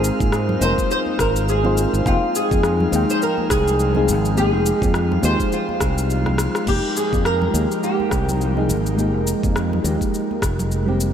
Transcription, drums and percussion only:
0.04 shaker medium
0.20 kick loud
0.20 high conga medium
0.20 shaker soft
0.32 cross-stick medium
0.32 shaker soft
0.49 low conga medium
0.61 high conga medium
0.61 shaker medium
0.78 kick medium
0.78 shaker soft
0.91 shaker soft
1.06 high conga medium
1.19 kick loud
1.19 cross-stick medium
1.19 shaker medium
1.36 shaker soft
1.49 shaker soft
1.64 high conga medium
1.64 low conga medium
1.78 shaker medium
1.94 shaker soft
2.06 kick loud
2.06 high conga loud
2.06 shaker soft
2.35 shaker medium
2.51 kick loud
2.51 high conga medium
2.51 shaker soft
2.63 cross-stick medium
2.63 shaker soft
2.80 low conga medium
2.93 high conga medium
2.93 shaker medium
3.10 shaker soft
3.22 shaker soft
3.38 high conga medium
3.50 kick medium
3.50 cross-stick medium
3.50 shaker medium
3.68 shaker soft
3.80 shaker soft
3.95 high conga medium
3.95 low conga medium
4.09 shaker medium
4.25 shaker soft
4.37 high conga medium
4.37 shaker soft
4.66 shaker medium
4.82 kick loud
4.82 high conga medium
4.82 shaker soft
4.94 cross-stick medium
4.94 shaker soft
5.12 low conga medium
5.22 high conga medium
5.22 shaker medium
5.40 kick medium
5.40 shaker soft
5.52 shaker soft
5.69 high conga medium
5.80 kick medium
5.80 cross-stick medium
5.80 shaker medium
5.98 shaker soft
6.10 shaker soft
6.26 cross-stick medium
6.26 high conga medium
6.26 low conga medium
6.38 cross-stick medium
6.38 shaker medium
6.55 cross-stick medium
6.55 shaker soft
6.67 kick loud
6.67 crash medium
6.67 high conga medium
6.67 shaker soft
6.97 shaker medium
7.13 kick loud
7.13 high conga medium
7.13 shaker soft
7.25 cross-stick medium
7.25 shaker soft
7.42 low conga medium
7.54 high conga medium
7.54 shaker medium
7.71 shaker soft
7.83 shaker soft
8.00 high conga medium
8.11 kick medium
8.11 cross-stick medium
8.11 shaker medium
8.29 low conga medium
8.29 shaker soft
8.41 shaker soft
8.57 high conga medium
8.70 shaker medium
8.86 shaker soft
8.98 high conga loud
8.98 shaker soft
9.27 shaker medium
9.43 kick loud
9.43 high conga medium
9.43 shaker soft
9.56 cross-stick medium
9.56 shaker soft
9.73 low conga medium
9.85 high conga medium
9.85 shaker medium
10.01 kick medium
10.01 shaker soft
10.14 shaker soft
10.31 high conga medium
10.42 kick loud
10.42 cross-stick medium
10.42 shaker medium
10.59 low conga medium
10.59 shaker soft
10.72 shaker soft
10.88 high conga medium
11.01 shaker medium

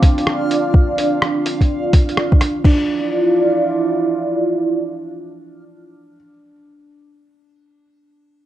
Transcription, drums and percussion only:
0.02 kick loud
0.02 closed hi-hat medium
0.18 closed hi-hat soft
0.27 cross-stick loud
0.51 closed hi-hat soft
0.74 kick loud
0.98 closed hi-hat soft
1.22 cross-stick loud
1.46 closed hi-hat medium
1.61 kick medium
1.61 closed hi-hat soft
1.93 kick loud
1.93 closed hi-hat soft
2.09 closed hi-hat soft
2.17 cross-stick loud
2.32 kick loud
2.41 cross-stick medium
2.41 closed hi-hat soft
2.64 kick loud
2.64 crash medium

